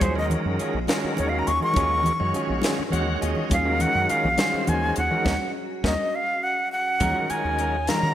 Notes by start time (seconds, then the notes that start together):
Already playing: F#3 C#4 F#4 G#4
0.01 D#2 F#3 C#4 F4 G#4 C5, kick, closed hi-hat, high conga
0.16 D#3 G#3 C#4 F#4 A#4 D#5
0.30 closed hi-hat, low conga
0.46 F#2
0.59 F#3 C#4 F4 G#4, muted fingered electric bass stroke, closed hi-hat, low conga
0.73 A#1, low conga
0.87 D#3 F#3 G#3 C#4 F4 F#4 G#4 A#4, snare, closed hi-hat, high conga
1.04 muted fingered electric bass stroke
1.17 D#2 C#5, closed hi-hat, low conga
1.29 F5
1.39 A#5
1.47 D#2 C#4 F4 G#4 C#6, closed hi-hat
1.60 D#3 G#3 C#4 F#4 A#4 C#6, low conga
1.74 D#2 F#3 C#4 F4 G#4, kick, closed hi-hat, high conga
2.03 closed hi-hat, low conga
2.20 F#2 D#3 G#3 C#4 F#4 C#5
2.33 F#3 C#4 F4 G#4, muted fingered electric bass stroke, closed hi-hat, low conga
2.47 A#1, low conga
2.62 F#3 C#4 F4 G#4, snare, closed hi-hat, high conga
2.79 muted fingered electric bass stroke
2.90 D#2 D#3 G#3 C#4 F#4 C#5 F#5, closed hi-hat, low conga
3.22 D#2 C#4 F4 G#4 D#5, closed hi-hat
3.35 low conga
3.50 D#2 F#3 C#4 F4 G#4 F5, kick, closed hi-hat, high conga
3.65 D#3 G#3 C#4 F#4 A#4
3.80 F#5, closed hi-hat, low conga
3.95 F#2
4.09 F#3 C#4 F4 G#4 F5, muted fingered electric bass stroke, closed hi-hat, low conga
4.24 A#1, low conga
4.37 D#3 F#3 G#3 C#4 F4 F#4 G#4 C5, snare, closed hi-hat, high conga
4.54 muted fingered electric bass stroke
4.67 D#2 G#5, closed hi-hat, low conga
4.96 D#2 C#4 F4 G#4 F#5, closed hi-hat
5.11 D#3 G#3 C#4 F#4 A#4, low conga
5.25 D#2 A#3 C#4 D#4 F#4, kick, snare, high conga
5.84 D#2 A#3 C#4 D#4 F#4 D#5, kick, snare, high conga
6.15 F5
6.43 F#5
6.72 F#5
7.00 D#2 D#3 F#3 G#3 C#4 F4 F#4 A#4 C#5 D#5 F#5 D#6, kick, closed hi-hat, high conga, low conga
7.17 low conga
7.30 C#4 F4 A#4 G#5, muted fingered electric bass stroke, closed hi-hat
7.45 D#2, low conga
7.59 F#3 C#4 F4 A#4, closed hi-hat
7.87 D#3 F#3 G#3 C#4 F4 F#4 A#4 A#5, snare, closed hi-hat, high conga, low conga
8.03 D#3